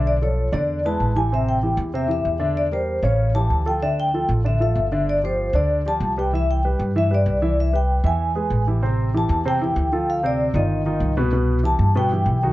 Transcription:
<<
  \new Staff \with { instrumentName = "Vibraphone" } { \time 4/4 \key c \major \tempo 4 = 192 d''8 des''4 d''4 a''4 gis''8 | e''8 g''4 r8 e''8 e''4. | d''8 c''4 des''4 a''4 g''8 | e''8 g''4 r8 e''8 e''4. |
d''8 c''4 d''4 a''4 g''8 | e''8 g''4 r8 e''8 d''4. | e''8 g''4 aes''2 r8 | r4 a''4 g''2 |
f''8 d''4 ees''2 r8 | r4 a''4 g''2 | }
  \new Staff \with { instrumentName = "Grand piano" } { \time 4/4 \key c \major <d d' d''>8 <f f' a'>4 <d d' d''>4 <gis e' b'>4 <e e' g'>8 | <c c' c''>4 <e e' g'>4 <c c' c''>8 <e e' g'>4 <d d' d''>8~ | <d d' d''>8 <g g' bes'>4 <des des' des''>4 <e e' g'>4 <f f' a'>8 | <d d' d''>4 <f f' a'>4 <d d' d''>8 <f f' a'>4 <d d' d''>8~ |
<d d' d''>8 <f f' g'>4 <d d' d''>4 <f f' g'>4 <g g' b'>8 | <e e' e''>4 <g g' b'>4 <e e' e''>8 <g g' b'>4 <e e' e''>8~ | <e e' e''>8 <g g' b'>4 <e e' e''>4 <gis gis' b'>4 <e e' g'>8 | <c c' c''>4 <e e' g'>4 <c c' c''>8 <e e' g'>4 <f f' a'>8~ |
<f f' a'>8 <c c' c''>4 <ees ees' f'>4 <dis dis' f'>4 <b, b b'>8 | <b, b b'>4 <e e' g'>4 <b, b b'>8 <e e' g'>4 <ees ees' fis'>8 | }
  \new Staff \with { instrumentName = "Upright bass" } { \clef bass \time 4/4 \key c \major b,,4. e,4. a,,4~ | a,,4. e,4. e,4~ | e,4. a,,4. d,4~ | d,4. a,,4. g,,4~ |
g,,4. d,4. c,4~ | c,4. g,4. c,4~ | c,4. e,4. a,,4~ | a,,4. e,4. d,4~ |
d,4. g,,4. c,4~ | c,4. g,4. b,,4 | }
>>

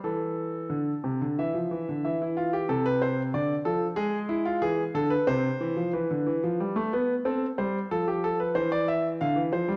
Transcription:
<<
  \new Staff \with { instrumentName = "Grand piano" } { \time 3/4 \key a \minor \tempo 4 = 92 a'2 e''4 | e''16 e'16 f'16 g'16 a'16 b'16 c''8 d''8 a'8 | gis'8 e'16 f'16 gis'8 a'16 b'16 c''4 | b'2 a'8 c''8 |
a'16 g'16 a'16 b'16 c''16 d''16 e''8 f''8 c''8 | }
  \new Staff \with { instrumentName = "Grand piano" } { \clef bass \time 3/4 \key a \minor e4 d8 c16 d16 e16 f16 e16 d16 | e4 c4 d8 f8 | gis4 e8 d8 c8 e16 f16 | e16 d16 e16 f16 g16 a16 b8 c'8 g8 |
f4 e4 d16 e16 f16 g16 | }
>>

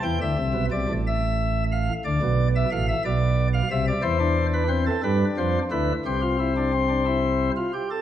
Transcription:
<<
  \new Staff \with { instrumentName = "Pipe organ" } { \time 6/8 \key c \mixolydian \tempo 4. = 60 << { g''16 e''8. d''8 e''4 f''8 | d''8. e''16 f''16 e''16 d''8. f''16 e''16 d''16 | \key c \major c''8. b'16 c''16 a'16 b'8 c''8 b'8 | c''2~ c''8 r8 | } \\ { r2. | r2. | e'16 d'8. c'8 d'4 e'8 | g'16 f'16 e'16 d'16 c'16 d'16 e'8. f'16 g'16 a'16 | } >> }
  \new Staff \with { instrumentName = "Pipe organ" } { \clef bass \time 6/8 \key c \mixolydian <e, e>16 <d, d>16 <c, c>16 <b,, b,>16 <c, c>16 <a,, a,>4.~ <a,, a,>16 | <d, d>16 <b,, b,>8. <a,, a,>8 <b,, b,>4 <c, c>8 | \key c \major <e, e>4. <g, g>8 <f, f>8 <d, d>8 | <c, c>2~ <c, c>8 r8 | }
>>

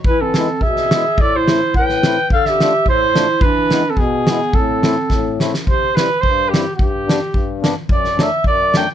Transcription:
<<
  \new Staff \with { instrumentName = "Flugelhorn" } { \time 2/4 \key a \minor \tempo 4 = 107 b'16 a'8. e''4 | d''16 c''8. g''4 | f''16 e''8. c''4 | b'8.~ b'32 a'32 gis'4 |
a'4. r8 | \key c \major c''8 b'8 c''8 g'8 | g'4. r8 | d''8 e''8 d''8 g''8 | }
  \new Staff \with { instrumentName = "Clarinet" } { \time 2/4 \key a \minor e'16 c'8. gis'4 | a'16 e'8. b'4 | a'16 g'8. e'4 | d'8.~ d'32 c'32 b4 |
c'4. r8 | \key c \major r2 | r2 | r2 | }
  \new Staff \with { instrumentName = "Accordion" } { \time 2/4 \key a \minor << { r8 <gis b e'>8 r8 <gis b e'>8 | r8 <a c' e'>8 r8 <a c' e'>8 | r8 <a d' f'>8 r8 <a d' f'>8 | r8 <gis b e'>8 r8 <gis b e'>8 |
r8 <a c' e'>8 r8 <a c' e'>8 | \key c \major r8 <g c' e'>8 r8 <g c' e'>8 | r8 <g b d'>8 r8 <g b d'>8 | r8 <fis a d'>8 r8 <fis a d'>8 | } \\ { e4 b,4 | a,4 a,4 | d4 a,4 | e4 b,4 |
a,4 a,4 | c4 g,4 | g,4 g,4 | fis,4 fis,4 | } >> }
  \new DrumStaff \with { instrumentName = "Drums" } \drummode { \time 2/4 bd8 sn8 bd16 sn16 sn8 | bd8 sn8 bd16 sn16 sn8 | bd16 sn16 sn8 bd8 sn8 | bd8 sn8 bd8 sn8 |
bd8 sn8 <bd sn>8 sn16 sn16 | bd8 sn8 bd8 sn8 | bd8 sn8 bd8 sn8 | bd16 sn16 sn8 bd8 sn8 | }
>>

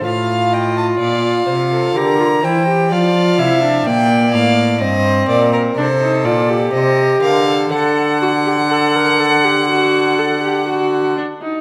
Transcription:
<<
  \new Staff \with { instrumentName = "Violin" } { \time 4/4 \key d \phrygian \tempo 4 = 62 f''8 g''16 a''16 f''4 bes''8 g''8 f''4 | g''8 f''8 ees''8 d''16 bes'16 c''8 d''8 ees''8 f''8 | fis''2.~ fis''8 r8 | }
  \new Staff \with { instrumentName = "Violin" } { \time 4/4 \key d \phrygian f''8 ees''8 d''8 c''16 a'16 bes'8 c''8 d''8 e''8 | d''4 c''8 bes'8 a'4 c''8 bes'16 a'16 | fis''2.~ fis''8 r8 | }
  \new Staff \with { instrumentName = "Viola" } { \time 4/4 \key d \phrygian f'2 g'16 f'16 e'16 g'16 f'8 e'16 d'16 | bes4 c'4 d'16 ees'16 f'16 g'4~ g'16 | a'8 fis'16 g'16 a'16 bes'16 a'16 g'16 fis'8 a'16 g'16 fis'8 d'16 ees'16 | }
  \new Staff \with { instrumentName = "Cello" } { \clef bass \time 4/4 \key d \phrygian a,4 bes,8 c8 d8 e8 f8 c8 | bes,8 a,8 g,8 bes,8 c8 bes,8 c8 d8 | d2.~ d8 r8 | }
>>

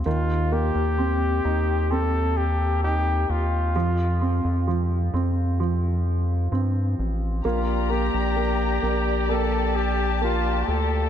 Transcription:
<<
  \new Staff \with { instrumentName = "String section" } { \time 4/4 \key bes \major \tempo 4 = 65 << { r1 | r1 | bes''2 a''2 | } \\ { r1 | r1 | <g' d''>1 | } >> }
  \new Staff \with { instrumentName = "Flugelhorn" } { \time 4/4 \key bes \major f'8 g'4. a'8 g'8 g'8 f'8~ | f'4 r2. | f'8 g'4. a'8 g'8 f'8 a'8 | }
  \new Staff \with { instrumentName = "Grand piano" } { \time 4/4 \key bes \major ees8 bes8 c'8 ees'8 c'4 ees'4 | f8 c'8 f8 c'8 f4 c'4 | bes8 bes8 bes8 bes8 bes4 bes4 | }
  \new Staff \with { instrumentName = "Analog synth bass" } { \clef bass \time 4/4 \key bes \major ees,8. ees,8. ees,2 ees,8 | f,8. f,8. f,4. g,8 a,,8 | bes,,8. bes,,8. bes,,2 d,8 | }
>>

